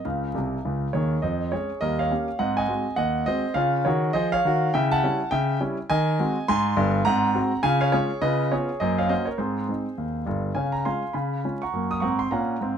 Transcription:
0.05 C#2 C#3 F5
0.35 C2 C3
0.65 C#2 C#3
0.93 D#2 D#3 G#4 C#5
1.22 F2 C5 D#5
1.52 G#3 C#4 G#4 C#5
1.81 D#2 G3 A#4 D#5
1.99 C#5 F5
2.11 A#3 C#4 G4
2.39 G#2 C4 D#5 F#5
2.57 D#5 G#5
2.68 G#3 C4 F#4
2.96 D#2 D#5 F#5
3.26 G#3 C4 F#4 C5 D#5
3.54 C#3 F4 C#5 F5
3.85 D#3 F#4 G#4 C#5
4.13 F3 G#4 C5 D#5
4.32 C#5 F5
4.45 D#3 F#4
4.74 C#3 E4 E5 G5
4.91 F#5 A5
5.03 G3 C#4 E4
5.31 C#3 E5 G5
5.61 G3 C#4 E4
5.90 D#3 D#5 G#5
6.19 G#3 C4 F#4
6.48 G#2 G#5 C6
6.76 G1 G2
7.05 G#2 C4 F#5 A#5
7.35 G#3 C4 F#4
7.63 C#3 F4 F5 G#5
7.81 C#5 F5
7.92 G#3 C#4 F4 G#4 C#5
8.21 C#3 F4 B4 D#5
8.52 B3 C#4 F4 G#4 C#5
8.80 F#2 A#3 C5 D#5
8.98 C#5 F5
9.09 A#3 C#4 F#4 C5 D#5
9.25 A#4 C#5
9.38 G#2 C4 G#4 C5
9.69 G#3 C4 D#4
9.98 D#2
10.26 G1 G2
10.55 C#3 C#5 F5 G#5
10.72 A#5
10.85 G#3 C#4 F4 F5 G#5 C6
11.13 C#3 F5 G#5 B5
11.45 G#3 C#4 F4
11.62 F#5 A#5 C#6
11.73 F#2 A#3
11.91 D#6
12.00 G#2 C4 F#5 A#5 C#6
12.19 C6
12.31 A#2 C#4 F5 F#5 A#5
12.61 G#2 C4

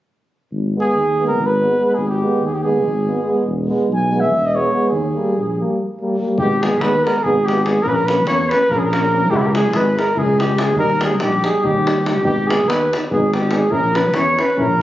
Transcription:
0.51 G#1
0.76 G#3 B3
0.80 G#4
0.95 D#2
1.18 G#3 B3
1.27 A#4
1.37 G#1
1.46 B4
1.59 G#3 B3
1.78 G#3 B3
1.94 G#1 G#4
2.08 G4
2.21 G#3 B3
2.41 D#2
2.46 G#4
2.54 G4
2.63 G#3 B3 G#4
2.85 G#1
3.06 G#3 B3
3.24 G#3 B3
3.45 E1
3.68 G#3 B3
3.88 B1
3.95 G#5
4.10 G#3 B3
4.20 E5
4.32 E1
4.46 D#5
4.52 G#3 B3 C#5
4.72 G#3 B3
4.89 D#2 G#4
5.15 G3 A#3
5.35 A#1
5.58 G3 A#3
6.00 G3 A#3
6.19 G3 A#3
6.37 G#1 G#3 B3 G4, davul low
6.61 G#3 B3 G#4, davul high
6.73 davul high
6.78 D#2 B4, davul high
6.82 G#3 B3
7.02 G#3 B3 A#4
7.07 davul high
7.16 davul high
7.22 G#1 B3 G#4, davul low
7.26 G#3
7.45 G#3 G4, davul high
7.50 B3
7.58 davul high
7.62 G#4, davul high
7.67 G#3 B3
7.81 A#1 A#4, davul low
7.86 A#3 C#4 B4
7.93 A#4
8.04 B4, davul high
8.09 A#3 C#4
8.17 davul high
8.26 E2 A#3 C#4 C#5, davul high
8.49 A#3 B4, davul high
8.54 C#4
8.69 A#1 A#3 A#4, davul low
8.73 C#4 G#4
8.79 G#4
8.85 A#4
8.92 A#3 C#4, davul high
9.05 davul high
9.12 A#3 C#4
9.29 C#2 G#3 E4 G4, davul low
9.36 E4
9.41 G4
9.46 A#4
9.54 G#3 E4 G#4, davul high
9.66 davul high
9.73 G#1 G#3 E4 B4, davul high
9.96 G#3 E4 A#4, davul high
10.08 davul high
10.15 C#2 G#3 E4 G#4, davul low
10.38 G#3 E4 G4, davul high
10.49 davul high
10.57 G#3 E4 G#4, davul high
10.76 D#2 G3 D#4 A#4, davul low
10.80 A#4
10.90 davul high
10.99 G3 D#4 G#4, davul high
11.04 G#4
11.11 davul high
11.19 A#1 G3 D#4 G4, davul high
11.33 davul high
11.42 G3 D#4 G#4, davul high
11.47 G#4
11.63 D#2 G3 D#4 G4, davul low
11.85 G3 D#4, davul high
11.96 davul high
12.05 G3 D#4 G4, davul high
12.11 G4
12.16 davul high
12.22 G#1 B3 D#4 G4, davul low
12.30 G4
12.47 B3 D#4 G#4, davul high
12.51 G#4
12.60 davul high
12.66 D#2 B3 D#4 B4, davul high
12.72 B4
12.91 B3, davul high
12.96 D#4
13.04 davul high
13.10 G#1 B3 G#4, davul low
13.16 D#4
13.32 B3 G4, davul high
13.36 D#4 G4
13.43 davul high
13.51 B3 D#4 G#4, davul high
13.57 G#4
13.69 A#1 C#4 E4 A#4, davul low
13.73 A#4
13.94 C#4 E4 B4, davul high
14.06 davul high
14.14 E2 C#4 E4 C#5, davul high
14.18 C#5
14.39 C#4 E4 B4, davul high
14.50 davul high
14.56 A#1 C#4 E4 A#4, davul low
14.65 A#4
14.79 C#4 E4

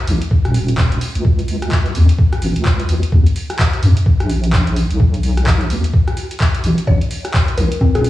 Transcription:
0.07 B1, open hi-hat
0.22 closed hi-hat
0.31 kick
0.45 D#1, cross-stick, closed hi-hat
0.54 open hi-hat
0.68 closed hi-hat
0.78 kick, clap
0.92 closed hi-hat
1.01 open hi-hat
1.15 C#2, closed hi-hat
1.25 kick
1.39 closed hi-hat
1.48 open hi-hat
1.62 cross-stick, closed hi-hat
1.72 kick, clap
1.86 closed hi-hat
1.95 E2, open hi-hat
2.09 closed hi-hat
2.19 kick
2.33 cross-stick, closed hi-hat
2.42 G#1, open hi-hat
2.56 C#2, closed hi-hat
2.65 kick, clap
2.80 closed hi-hat
2.89 C#2, open hi-hat
3.03 closed hi-hat
3.12 D#2, kick
3.26 closed hi-hat
3.36 open hi-hat
3.50 cross-stick, closed hi-hat
3.59 kick, clap
3.73 closed hi-hat
3.83 F#2, open hi-hat
3.97 closed hi-hat
4.06 kick
4.20 A#1, cross-stick, closed hi-hat
4.29 open hi-hat
4.44 closed hi-hat
4.53 kick, clap
4.67 closed hi-hat
4.76 open hi-hat
4.90 B1, closed hi-hat
5.00 kick
5.14 closed hi-hat
5.23 open hi-hat
5.37 cross-stick, closed hi-hat
5.47 kick, clap
5.61 closed hi-hat
5.70 D2, open hi-hat
5.84 closed hi-hat
5.94 kick
6.08 cross-stick, closed hi-hat
6.17 open hi-hat
6.31 closed hi-hat
6.40 kick, clap
6.54 closed hi-hat
6.64 A1, open hi-hat
6.78 closed hi-hat
6.87 G#1 C#5, kick
7.01 closed hi-hat
7.11 open hi-hat
7.25 cross-stick, closed hi-hat
7.34 kick, clap
7.48 closed hi-hat
7.58 B1 A#4, open hi-hat
7.72 closed hi-hat
7.81 kick, high conga
7.95 D#1 G#4, cross-stick, closed hi-hat
8.04 open hi-hat

